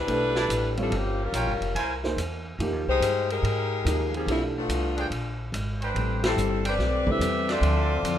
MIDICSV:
0, 0, Header, 1, 7, 480
1, 0, Start_track
1, 0, Key_signature, 0, "major"
1, 0, Tempo, 419287
1, 1049, Time_signature, 4, 2, 24, 8
1, 9370, End_track
2, 0, Start_track
2, 0, Title_t, "Trumpet section"
2, 0, Program_c, 0, 61
2, 405, Note_on_c, 0, 81, 99
2, 407, Note_on_c, 0, 64, 81
2, 407, Note_on_c, 0, 71, 82
2, 408, Note_on_c, 0, 74, 70
2, 515, Note_off_c, 0, 81, 0
2, 516, Note_off_c, 0, 71, 0
2, 517, Note_off_c, 0, 64, 0
2, 517, Note_off_c, 0, 74, 0
2, 1531, Note_on_c, 0, 65, 66
2, 1531, Note_on_c, 0, 79, 83
2, 1532, Note_on_c, 0, 70, 72
2, 1532, Note_on_c, 0, 73, 67
2, 1744, Note_off_c, 0, 65, 0
2, 1744, Note_off_c, 0, 79, 0
2, 1745, Note_off_c, 0, 70, 0
2, 1745, Note_off_c, 0, 73, 0
2, 2012, Note_on_c, 0, 72, 82
2, 2013, Note_on_c, 0, 64, 83
2, 2013, Note_on_c, 0, 80, 97
2, 2016, Note_on_c, 0, 70, 78
2, 2225, Note_off_c, 0, 64, 0
2, 2225, Note_off_c, 0, 72, 0
2, 2225, Note_off_c, 0, 80, 0
2, 2227, Note_off_c, 0, 70, 0
2, 5690, Note_on_c, 0, 68, 65
2, 5693, Note_on_c, 0, 62, 83
2, 5694, Note_on_c, 0, 72, 72
2, 5694, Note_on_c, 0, 79, 83
2, 5798, Note_off_c, 0, 68, 0
2, 5800, Note_off_c, 0, 62, 0
2, 5800, Note_off_c, 0, 72, 0
2, 5800, Note_off_c, 0, 79, 0
2, 6654, Note_on_c, 0, 79, 84
2, 6655, Note_on_c, 0, 72, 76
2, 6656, Note_on_c, 0, 62, 79
2, 6657, Note_on_c, 0, 71, 75
2, 7259, Note_off_c, 0, 79, 0
2, 7260, Note_off_c, 0, 62, 0
2, 7260, Note_off_c, 0, 72, 0
2, 7261, Note_off_c, 0, 71, 0
2, 7610, Note_on_c, 0, 79, 81
2, 7613, Note_on_c, 0, 62, 72
2, 7613, Note_on_c, 0, 71, 66
2, 7614, Note_on_c, 0, 72, 71
2, 7718, Note_off_c, 0, 79, 0
2, 7720, Note_off_c, 0, 62, 0
2, 7720, Note_off_c, 0, 71, 0
2, 7720, Note_off_c, 0, 72, 0
2, 8572, Note_on_c, 0, 74, 88
2, 8573, Note_on_c, 0, 76, 87
2, 8574, Note_on_c, 0, 62, 87
2, 8574, Note_on_c, 0, 72, 83
2, 9179, Note_off_c, 0, 74, 0
2, 9179, Note_off_c, 0, 76, 0
2, 9180, Note_off_c, 0, 62, 0
2, 9180, Note_off_c, 0, 72, 0
2, 9370, End_track
3, 0, Start_track
3, 0, Title_t, "Saxophone section"
3, 0, Program_c, 1, 65
3, 0, Note_on_c, 1, 55, 76
3, 0, Note_on_c, 1, 62, 85
3, 0, Note_on_c, 1, 64, 86
3, 0, Note_on_c, 1, 71, 105
3, 864, Note_off_c, 1, 55, 0
3, 864, Note_off_c, 1, 64, 0
3, 865, Note_off_c, 1, 71, 0
3, 866, Note_off_c, 1, 62, 0
3, 931, Note_on_c, 1, 69, 87
3, 933, Note_on_c, 1, 62, 68
3, 934, Note_on_c, 1, 55, 70
3, 937, Note_on_c, 1, 64, 69
3, 1071, Note_off_c, 1, 69, 0
3, 1072, Note_off_c, 1, 62, 0
3, 1073, Note_off_c, 1, 55, 0
3, 1074, Note_off_c, 1, 64, 0
3, 1096, Note_on_c, 1, 53, 77
3, 1098, Note_on_c, 1, 61, 75
3, 1099, Note_on_c, 1, 58, 71
3, 1099, Note_on_c, 1, 67, 89
3, 1390, Note_off_c, 1, 53, 0
3, 1391, Note_off_c, 1, 58, 0
3, 1391, Note_off_c, 1, 61, 0
3, 1391, Note_off_c, 1, 67, 0
3, 1415, Note_on_c, 1, 55, 66
3, 1420, Note_on_c, 1, 65, 74
3, 1422, Note_on_c, 1, 61, 77
3, 1422, Note_on_c, 1, 70, 95
3, 2032, Note_off_c, 1, 55, 0
3, 2035, Note_off_c, 1, 65, 0
3, 2036, Note_off_c, 1, 61, 0
3, 2353, Note_off_c, 1, 70, 0
3, 3307, Note_on_c, 1, 56, 95
3, 3308, Note_on_c, 1, 67, 93
3, 3309, Note_on_c, 1, 63, 88
3, 3312, Note_on_c, 1, 72, 102
3, 3743, Note_off_c, 1, 56, 0
3, 3743, Note_off_c, 1, 67, 0
3, 3744, Note_off_c, 1, 63, 0
3, 3746, Note_off_c, 1, 72, 0
3, 3790, Note_on_c, 1, 56, 90
3, 3794, Note_on_c, 1, 63, 87
3, 3794, Note_on_c, 1, 70, 100
3, 3796, Note_on_c, 1, 67, 91
3, 4691, Note_off_c, 1, 56, 0
3, 4693, Note_off_c, 1, 63, 0
3, 4694, Note_off_c, 1, 70, 0
3, 4695, Note_off_c, 1, 67, 0
3, 4758, Note_on_c, 1, 68, 83
3, 4760, Note_on_c, 1, 55, 73
3, 4762, Note_on_c, 1, 51, 74
3, 4763, Note_on_c, 1, 60, 73
3, 4904, Note_off_c, 1, 68, 0
3, 4905, Note_off_c, 1, 51, 0
3, 4905, Note_off_c, 1, 55, 0
3, 4906, Note_off_c, 1, 60, 0
3, 4925, Note_on_c, 1, 57, 68
3, 4926, Note_on_c, 1, 64, 85
3, 4928, Note_on_c, 1, 60, 76
3, 4929, Note_on_c, 1, 53, 74
3, 5060, Note_off_c, 1, 57, 0
3, 5060, Note_off_c, 1, 64, 0
3, 5062, Note_off_c, 1, 53, 0
3, 5062, Note_off_c, 1, 60, 0
3, 5246, Note_on_c, 1, 59, 68
3, 5248, Note_on_c, 1, 57, 66
3, 5251, Note_on_c, 1, 62, 72
3, 5252, Note_on_c, 1, 65, 90
3, 5824, Note_off_c, 1, 59, 0
3, 5825, Note_off_c, 1, 57, 0
3, 6142, Note_off_c, 1, 62, 0
3, 6143, Note_off_c, 1, 65, 0
3, 7157, Note_on_c, 1, 69, 81
3, 7159, Note_on_c, 1, 64, 76
3, 7162, Note_on_c, 1, 55, 77
3, 7162, Note_on_c, 1, 60, 74
3, 7589, Note_off_c, 1, 69, 0
3, 7590, Note_off_c, 1, 64, 0
3, 7591, Note_off_c, 1, 55, 0
3, 7591, Note_off_c, 1, 60, 0
3, 7649, Note_on_c, 1, 60, 79
3, 7650, Note_on_c, 1, 67, 82
3, 7650, Note_on_c, 1, 71, 85
3, 7650, Note_on_c, 1, 74, 102
3, 8107, Note_off_c, 1, 60, 0
3, 8107, Note_off_c, 1, 71, 0
3, 8108, Note_off_c, 1, 67, 0
3, 8108, Note_off_c, 1, 74, 0
3, 8128, Note_on_c, 1, 60, 91
3, 8130, Note_on_c, 1, 67, 88
3, 8131, Note_on_c, 1, 71, 90
3, 8132, Note_on_c, 1, 76, 102
3, 8587, Note_off_c, 1, 60, 0
3, 8588, Note_off_c, 1, 67, 0
3, 8588, Note_off_c, 1, 71, 0
3, 8588, Note_off_c, 1, 76, 0
3, 8603, Note_on_c, 1, 69, 90
3, 8603, Note_on_c, 1, 74, 95
3, 8604, Note_on_c, 1, 60, 88
3, 8604, Note_on_c, 1, 65, 90
3, 9370, Note_off_c, 1, 60, 0
3, 9370, Note_off_c, 1, 65, 0
3, 9370, Note_off_c, 1, 69, 0
3, 9370, Note_off_c, 1, 74, 0
3, 9370, End_track
4, 0, Start_track
4, 0, Title_t, "Upright piano"
4, 0, Program_c, 2, 0
4, 86, Note_on_c, 2, 57, 60
4, 93, Note_on_c, 2, 62, 52
4, 96, Note_on_c, 2, 67, 55
4, 100, Note_on_c, 2, 71, 61
4, 821, Note_off_c, 2, 57, 0
4, 824, Note_off_c, 2, 62, 0
4, 826, Note_off_c, 2, 67, 0
4, 828, Note_off_c, 2, 71, 0
4, 884, Note_on_c, 2, 55, 61
4, 895, Note_on_c, 2, 60, 49
4, 897, Note_on_c, 2, 65, 56
4, 902, Note_on_c, 2, 73, 58
4, 1031, Note_off_c, 2, 55, 0
4, 1037, Note_off_c, 2, 60, 0
4, 1038, Note_off_c, 2, 65, 0
4, 1040, Note_off_c, 2, 73, 0
4, 2330, Note_on_c, 2, 58, 58
4, 2338, Note_on_c, 2, 63, 54
4, 2341, Note_on_c, 2, 68, 51
4, 2345, Note_on_c, 2, 72, 63
4, 2474, Note_off_c, 2, 58, 0
4, 2478, Note_off_c, 2, 63, 0
4, 2479, Note_off_c, 2, 68, 0
4, 2481, Note_off_c, 2, 72, 0
4, 2976, Note_on_c, 2, 53, 60
4, 2981, Note_on_c, 2, 63, 54
4, 2984, Note_on_c, 2, 58, 60
4, 2988, Note_on_c, 2, 67, 74
4, 3257, Note_off_c, 2, 53, 0
4, 3260, Note_off_c, 2, 63, 0
4, 3261, Note_off_c, 2, 58, 0
4, 3264, Note_off_c, 2, 67, 0
4, 4410, Note_on_c, 2, 58, 53
4, 4411, Note_on_c, 2, 53, 56
4, 4423, Note_on_c, 2, 67, 63
4, 4424, Note_on_c, 2, 63, 52
4, 4887, Note_off_c, 2, 67, 0
4, 4889, Note_off_c, 2, 53, 0
4, 4889, Note_off_c, 2, 58, 0
4, 4889, Note_on_c, 2, 57, 48
4, 4891, Note_on_c, 2, 52, 50
4, 4895, Note_off_c, 2, 63, 0
4, 4897, Note_on_c, 2, 62, 50
4, 4904, Note_on_c, 2, 67, 56
4, 5174, Note_off_c, 2, 57, 0
4, 5175, Note_off_c, 2, 52, 0
4, 5178, Note_off_c, 2, 62, 0
4, 5181, Note_off_c, 2, 67, 0
4, 8090, Note_on_c, 2, 50, 54
4, 8095, Note_on_c, 2, 55, 50
4, 8103, Note_on_c, 2, 60, 48
4, 8105, Note_on_c, 2, 64, 62
4, 8234, Note_off_c, 2, 50, 0
4, 8236, Note_off_c, 2, 55, 0
4, 8240, Note_off_c, 2, 60, 0
4, 8241, Note_off_c, 2, 64, 0
4, 9370, End_track
5, 0, Start_track
5, 0, Title_t, "Steel-string acoustic guitar"
5, 0, Program_c, 3, 25
5, 6811, Note_on_c, 3, 45, 51
5, 6826, Note_on_c, 3, 55, 51
5, 6831, Note_on_c, 3, 60, 51
5, 6838, Note_on_c, 3, 62, 54
5, 7143, Note_off_c, 3, 45, 0
5, 7150, Note_off_c, 3, 55, 0
5, 7153, Note_off_c, 3, 60, 0
5, 7157, Note_off_c, 3, 62, 0
5, 7297, Note_on_c, 3, 45, 56
5, 7305, Note_on_c, 3, 55, 53
5, 7313, Note_on_c, 3, 60, 60
5, 7320, Note_on_c, 3, 62, 57
5, 7626, Note_off_c, 3, 45, 0
5, 7630, Note_off_c, 3, 55, 0
5, 7634, Note_off_c, 3, 60, 0
5, 7638, Note_off_c, 3, 62, 0
5, 7768, Note_on_c, 3, 45, 47
5, 7780, Note_on_c, 3, 55, 43
5, 7787, Note_on_c, 3, 60, 52
5, 7796, Note_on_c, 3, 62, 53
5, 8102, Note_off_c, 3, 45, 0
5, 8108, Note_off_c, 3, 55, 0
5, 8111, Note_off_c, 3, 60, 0
5, 8116, Note_off_c, 3, 62, 0
5, 8250, Note_on_c, 3, 45, 55
5, 8254, Note_on_c, 3, 55, 53
5, 8264, Note_on_c, 3, 60, 61
5, 8269, Note_on_c, 3, 62, 65
5, 8583, Note_off_c, 3, 45, 0
5, 8585, Note_off_c, 3, 55, 0
5, 8590, Note_off_c, 3, 60, 0
5, 8592, Note_off_c, 3, 62, 0
5, 8726, Note_on_c, 3, 50, 46
5, 8736, Note_on_c, 3, 53, 45
5, 8741, Note_on_c, 3, 60, 49
5, 8749, Note_on_c, 3, 64, 53
5, 9061, Note_off_c, 3, 50, 0
5, 9066, Note_off_c, 3, 53, 0
5, 9068, Note_off_c, 3, 60, 0
5, 9072, Note_off_c, 3, 64, 0
5, 9212, Note_on_c, 3, 50, 68
5, 9219, Note_on_c, 3, 53, 68
5, 9226, Note_on_c, 3, 60, 71
5, 9233, Note_on_c, 3, 64, 75
5, 9370, Note_off_c, 3, 50, 0
5, 9370, Note_off_c, 3, 53, 0
5, 9370, Note_off_c, 3, 60, 0
5, 9370, Note_off_c, 3, 64, 0
5, 9370, End_track
6, 0, Start_track
6, 0, Title_t, "Upright bass"
6, 0, Program_c, 4, 32
6, 87, Note_on_c, 4, 35, 77
6, 554, Note_off_c, 4, 35, 0
6, 559, Note_on_c, 4, 33, 84
6, 1029, Note_off_c, 4, 33, 0
6, 1036, Note_on_c, 4, 31, 79
6, 1507, Note_off_c, 4, 31, 0
6, 1518, Note_on_c, 4, 34, 86
6, 1679, Note_off_c, 4, 34, 0
6, 1679, Note_on_c, 4, 31, 57
6, 1833, Note_off_c, 4, 31, 0
6, 1840, Note_on_c, 4, 29, 65
6, 1992, Note_off_c, 4, 29, 0
6, 2002, Note_on_c, 4, 36, 76
6, 2470, Note_off_c, 4, 36, 0
6, 2481, Note_on_c, 4, 40, 86
6, 2949, Note_off_c, 4, 40, 0
6, 2962, Note_on_c, 4, 41, 84
6, 3120, Note_off_c, 4, 41, 0
6, 3120, Note_on_c, 4, 39, 56
6, 3284, Note_off_c, 4, 39, 0
6, 3289, Note_on_c, 4, 36, 66
6, 3434, Note_off_c, 4, 36, 0
6, 3441, Note_on_c, 4, 43, 87
6, 3909, Note_off_c, 4, 43, 0
6, 3925, Note_on_c, 4, 44, 79
6, 4392, Note_off_c, 4, 44, 0
6, 4407, Note_on_c, 4, 39, 84
6, 4873, Note_off_c, 4, 39, 0
6, 4883, Note_on_c, 4, 35, 87
6, 5350, Note_off_c, 4, 35, 0
6, 5367, Note_on_c, 4, 36, 84
6, 5832, Note_off_c, 4, 36, 0
6, 5841, Note_on_c, 4, 34, 78
6, 6310, Note_off_c, 4, 34, 0
6, 6323, Note_on_c, 4, 32, 86
6, 6790, Note_off_c, 4, 32, 0
6, 6806, Note_on_c, 4, 33, 78
6, 7272, Note_off_c, 4, 33, 0
6, 7284, Note_on_c, 4, 31, 86
6, 7751, Note_off_c, 4, 31, 0
6, 7763, Note_on_c, 4, 35, 72
6, 8228, Note_off_c, 4, 35, 0
6, 8235, Note_on_c, 4, 40, 88
6, 8707, Note_off_c, 4, 40, 0
6, 8717, Note_on_c, 4, 38, 89
6, 9184, Note_off_c, 4, 38, 0
6, 9190, Note_on_c, 4, 41, 83
6, 9352, Note_off_c, 4, 41, 0
6, 9370, End_track
7, 0, Start_track
7, 0, Title_t, "Drums"
7, 93, Note_on_c, 9, 51, 60
7, 208, Note_off_c, 9, 51, 0
7, 407, Note_on_c, 9, 38, 60
7, 522, Note_off_c, 9, 38, 0
7, 573, Note_on_c, 9, 44, 59
7, 573, Note_on_c, 9, 51, 68
7, 688, Note_off_c, 9, 44, 0
7, 688, Note_off_c, 9, 51, 0
7, 887, Note_on_c, 9, 51, 43
7, 1001, Note_off_c, 9, 51, 0
7, 1051, Note_on_c, 9, 51, 62
7, 1166, Note_off_c, 9, 51, 0
7, 1530, Note_on_c, 9, 44, 63
7, 1530, Note_on_c, 9, 51, 75
7, 1644, Note_off_c, 9, 44, 0
7, 1644, Note_off_c, 9, 51, 0
7, 1852, Note_on_c, 9, 51, 46
7, 1966, Note_off_c, 9, 51, 0
7, 2014, Note_on_c, 9, 51, 64
7, 2128, Note_off_c, 9, 51, 0
7, 2332, Note_on_c, 9, 38, 44
7, 2447, Note_off_c, 9, 38, 0
7, 2498, Note_on_c, 9, 44, 52
7, 2498, Note_on_c, 9, 51, 66
7, 2612, Note_off_c, 9, 44, 0
7, 2612, Note_off_c, 9, 51, 0
7, 2978, Note_on_c, 9, 51, 60
7, 3093, Note_off_c, 9, 51, 0
7, 3460, Note_on_c, 9, 44, 61
7, 3460, Note_on_c, 9, 51, 74
7, 3575, Note_off_c, 9, 44, 0
7, 3575, Note_off_c, 9, 51, 0
7, 3782, Note_on_c, 9, 51, 49
7, 3896, Note_off_c, 9, 51, 0
7, 3945, Note_on_c, 9, 51, 61
7, 4059, Note_off_c, 9, 51, 0
7, 4425, Note_on_c, 9, 44, 55
7, 4425, Note_on_c, 9, 51, 66
7, 4539, Note_off_c, 9, 44, 0
7, 4539, Note_off_c, 9, 51, 0
7, 4742, Note_on_c, 9, 51, 40
7, 4857, Note_off_c, 9, 51, 0
7, 4903, Note_on_c, 9, 51, 63
7, 5017, Note_off_c, 9, 51, 0
7, 5376, Note_on_c, 9, 44, 54
7, 5376, Note_on_c, 9, 51, 74
7, 5490, Note_off_c, 9, 44, 0
7, 5490, Note_off_c, 9, 51, 0
7, 5697, Note_on_c, 9, 51, 46
7, 5811, Note_off_c, 9, 51, 0
7, 5857, Note_on_c, 9, 51, 60
7, 5971, Note_off_c, 9, 51, 0
7, 6340, Note_on_c, 9, 44, 46
7, 6340, Note_on_c, 9, 51, 70
7, 6455, Note_off_c, 9, 44, 0
7, 6455, Note_off_c, 9, 51, 0
7, 6662, Note_on_c, 9, 51, 39
7, 6776, Note_off_c, 9, 51, 0
7, 6823, Note_on_c, 9, 51, 55
7, 6937, Note_off_c, 9, 51, 0
7, 7138, Note_on_c, 9, 38, 85
7, 7140, Note_on_c, 9, 51, 66
7, 7252, Note_off_c, 9, 38, 0
7, 7254, Note_off_c, 9, 51, 0
7, 7300, Note_on_c, 9, 44, 59
7, 7415, Note_off_c, 9, 44, 0
7, 7614, Note_on_c, 9, 51, 74
7, 7728, Note_off_c, 9, 51, 0
7, 7774, Note_on_c, 9, 38, 36
7, 7888, Note_off_c, 9, 38, 0
7, 8091, Note_on_c, 9, 36, 57
7, 8206, Note_off_c, 9, 36, 0
7, 8257, Note_on_c, 9, 44, 52
7, 8257, Note_on_c, 9, 51, 66
7, 8371, Note_off_c, 9, 44, 0
7, 8371, Note_off_c, 9, 51, 0
7, 8571, Note_on_c, 9, 38, 42
7, 8574, Note_on_c, 9, 51, 45
7, 8686, Note_off_c, 9, 38, 0
7, 8688, Note_off_c, 9, 51, 0
7, 8734, Note_on_c, 9, 51, 60
7, 8849, Note_off_c, 9, 51, 0
7, 9213, Note_on_c, 9, 44, 53
7, 9213, Note_on_c, 9, 51, 68
7, 9327, Note_off_c, 9, 44, 0
7, 9327, Note_off_c, 9, 51, 0
7, 9370, End_track
0, 0, End_of_file